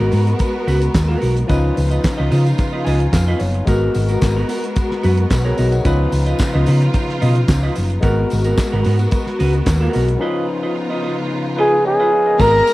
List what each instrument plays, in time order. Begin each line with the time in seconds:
Already playing: tine electric piano G#3 B3 F#4 A#4, string section G#3 B3 F#4 A#4
0.00 fingered electric bass G#1, clean electric guitar B3 F#4 A#4
0.12 fingered electric bass G#2, clean electric guitar B3 F#4 A#4, open hi-hat, tambourine
0.27 muted clean electric guitar stroke, closed hi-hat
0.39 kick, closed hi-hat, tambourine
0.55 muted clean electric guitar stroke
0.67 fingered electric bass C#2, clean electric guitar B3 F#4 B4, open hi-hat, tambourine
0.81 muted clean electric guitar stroke, closed hi-hat
0.94 fingered electric bass D#2, muted clean electric guitar stroke, kick, snare, clap, closed hi-hat, tambourine
1.08 clean electric guitar B3 F#4 A#4, tambourine
1.21 fingered electric bass B1, clean electric guitar B3 F#4 A#4, open hi-hat, tambourine
1.36 muted clean electric guitar stroke, closed hi-hat
1.47 fingered electric bass C#2, string section C#3 B3 D#4 F4, tine electric piano F3 C#4 D#4 B4, clean electric guitar F4 B4 D#5, kick, closed hi-hat
1.51 tambourine
1.76 fingered electric bass C#2, muted clean electric guitar stroke, open hi-hat, tambourine
1.91 clean electric guitar F4 B4 D#5, closed hi-hat, tambourine
2.03 muted clean electric guitar stroke, kick, snare, clap, closed hi-hat, tambourine
2.18 fingered electric bass C#2, clean electric guitar F4 B4 D#5
2.30 fingered electric bass C#3, clean electric guitar F4 B4 D#5, open hi-hat, tambourine
2.45 muted clean electric guitar stroke, closed hi-hat, tambourine
2.58 muted clean electric guitar stroke, kick, closed hi-hat, tambourine
2.72 clean electric guitar F4 B4 D#5
2.85 fingered electric bass C#2, clean electric guitar F4 B4 D#5, tine electric piano G#5, open hi-hat, tambourine
3.00 muted clean electric guitar stroke, closed hi-hat
3.12 fingered electric bass F2, tine electric piano F5, muted clean electric guitar stroke, kick, snare, clap, closed hi-hat, tambourine
3.28 clean electric guitar F4 B4 D#5
3.39 fingered electric bass F#1, tine electric piano C#5, muted clean electric guitar stroke, open hi-hat, tambourine
3.54 muted clean electric guitar stroke, closed hi-hat
3.65 fingered electric bass G#1, tine electric piano G#3 B3 F#4 A#4, string section G#3 B3 F#4 A#4, clean electric guitar B3 F#4, kick, closed hi-hat, tambourine
3.69 clean electric guitar A#4
3.94 fingered electric bass G#1, muted clean electric guitar stroke, open hi-hat, tambourine
4.09 clean electric guitar B3 F#4 A#4, closed hi-hat, tambourine
4.21 fingered electric bass G#1, muted clean electric guitar stroke, kick, snare, clap, closed hi-hat, tambourine
4.37 clean electric guitar B3 F#4 A#4
4.49 clean electric guitar B3 F#4 A#4, open hi-hat, tambourine
4.64 muted clean electric guitar stroke, closed hi-hat
4.76 kick, closed hi-hat, tambourine
4.91 muted clean electric guitar stroke, snare
5.03 fingered electric bass F#2, clean electric guitar B3 F#4 B4, open hi-hat, tambourine
5.17 muted clean electric guitar stroke, closed hi-hat
5.30 fingered electric bass B1, tine electric piano F#4 B4, muted clean electric guitar stroke, kick, snare, clap, closed hi-hat, tambourine
5.45 clean electric guitar B3 F#4 A#4, tine electric piano G#4 C#5, tambourine
5.57 fingered electric bass B1, clean electric guitar B3 F#4 A#4, tine electric piano A#4 D#5, open hi-hat, tambourine
5.72 tine electric piano C#5 F#5, muted clean electric guitar stroke, closed hi-hat, tambourine
5.83 fingered electric bass C#2, string section C#3 B3 D#4 F4, tine electric piano F3 C#4 D#4 B4, clean electric guitar F4 B4 D#5, kick, closed hi-hat, tambourine
6.12 fingered electric bass C#2, muted clean electric guitar stroke, open hi-hat, tambourine
6.26 clean electric guitar F4 B4 D#5, closed hi-hat, tambourine
6.39 muted clean electric guitar stroke, kick, snare, clap, closed hi-hat, tambourine
6.54 fingered electric bass C#2, clean electric guitar F4 B4 D#5
6.66 fingered electric bass C#3, clean electric guitar F4 B4 D#5, open hi-hat, tambourine
6.81 muted clean electric guitar stroke, closed hi-hat
6.93 kick, closed hi-hat, tambourine
7.08 muted clean electric guitar stroke, snare
7.21 fingered electric bass B2, clean electric guitar F4 B4 D#5, open hi-hat, tambourine
7.35 muted clean electric guitar stroke, closed hi-hat
7.48 fingered electric bass C#2, muted clean electric guitar stroke, kick, snare, clap, closed hi-hat, tambourine
7.63 clean electric guitar F4 B4 D#5, tambourine
7.75 fingered electric bass F#1, muted clean electric guitar stroke, open hi-hat, tambourine
7.90 muted clean electric guitar stroke, closed hi-hat
8.01 fingered electric bass G#1, tine electric piano G#3 B3 F#4 A#4, string section G#3 B3 F#4 A#4, clean electric guitar B3 F#4 A#4, kick, closed hi-hat, tambourine
8.30 fingered electric bass G#1, muted clean electric guitar stroke, open hi-hat, tambourine
8.44 clean electric guitar B3 F#4 A#4, closed hi-hat, tambourine
8.57 muted clean electric guitar stroke, kick, snare, clap, closed hi-hat, tambourine
8.72 fingered electric bass G#1, clean electric guitar B3 F#4 A#4
8.84 fingered electric bass G#2, clean electric guitar B3 F#4 A#4, open hi-hat, tambourine
8.99 muted clean electric guitar stroke, closed hi-hat, tambourine
9.11 kick, closed hi-hat, tambourine
9.26 muted clean electric guitar stroke, snare
9.39 fingered electric bass C#2, clean electric guitar B3 F#4 B4, open hi-hat, tambourine
9.53 muted clean electric guitar stroke, closed hi-hat
9.66 fingered electric bass D#2, kick, snare, clap, closed hi-hat, tambourine
9.81 clean electric guitar B3 F#4 A#4
9.92 fingered electric bass B1, tine electric piano G#3 B3 F#4 A#4, clean electric guitar B3 F#4 A#4, open hi-hat, tambourine
10.08 muted clean electric guitar stroke, closed hi-hat
10.19 string section C#3 B3 D#4 F4, tine electric piano F3 C#4 D#4 B4, clean electric guitar F4 B4 D#5
10.49 muted clean electric guitar stroke
10.63 clean electric guitar F4 B4 D#5
10.75 muted clean electric guitar stroke
10.90 clean electric guitar F4 B4 D#5
11.02 clean electric guitar F4 B4 D#5
11.18 muted clean electric guitar stroke
11.45 muted clean electric guitar stroke
11.57 clean electric guitar F4 B4 D#5, flugelhorn G#4, tine electric piano B4
11.72 muted clean electric guitar stroke
11.85 tine electric piano G#4 C#5 D#5, flugelhorn G#4, muted clean electric guitar stroke
12.00 clean electric guitar F4 B4 D#5, tine electric piano B4 F5
12.12 tine electric piano G#5, muted clean electric guitar stroke
12.26 tine electric piano A#4 D#5, muted clean electric guitar stroke
12.38 fingered electric bass G#1, tine electric piano G#3 B3 F#4 A4, string section G#3 B3 F#4 A#5, clean electric guitar B3 F#4 A#4, violin section A#4 A#5, flugelhorn A#4, kick, crash, tambourine
12.47 tine electric piano G#4
12.67 muted clean electric guitar stroke, open hi-hat, tambourine